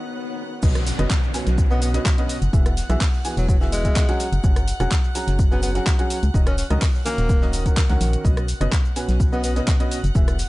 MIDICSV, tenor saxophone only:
0, 0, Header, 1, 2, 480
1, 0, Start_track
1, 0, Key_signature, 5, "major"
1, 0, Tempo, 476190
1, 633, Time_signature, 4, 2, 24, 8
1, 10573, End_track
2, 0, Start_track
2, 0, Title_t, "Tenor saxophone"
2, 0, Program_c, 0, 66
2, 1719, Note_on_c, 0, 59, 88
2, 1792, Note_off_c, 0, 59, 0
2, 1834, Note_on_c, 0, 59, 78
2, 1914, Note_off_c, 0, 59, 0
2, 3400, Note_on_c, 0, 54, 90
2, 3472, Note_off_c, 0, 54, 0
2, 3514, Note_on_c, 0, 54, 74
2, 3594, Note_off_c, 0, 54, 0
2, 3754, Note_on_c, 0, 56, 104
2, 4284, Note_off_c, 0, 56, 0
2, 5560, Note_on_c, 0, 59, 87
2, 5633, Note_off_c, 0, 59, 0
2, 5673, Note_on_c, 0, 59, 81
2, 5753, Note_off_c, 0, 59, 0
2, 6518, Note_on_c, 0, 61, 89
2, 6591, Note_off_c, 0, 61, 0
2, 6633, Note_on_c, 0, 61, 75
2, 6714, Note_off_c, 0, 61, 0
2, 7113, Note_on_c, 0, 58, 95
2, 7593, Note_off_c, 0, 58, 0
2, 9398, Note_on_c, 0, 59, 89
2, 9471, Note_off_c, 0, 59, 0
2, 9512, Note_on_c, 0, 59, 80
2, 9593, Note_off_c, 0, 59, 0
2, 10573, End_track
0, 0, End_of_file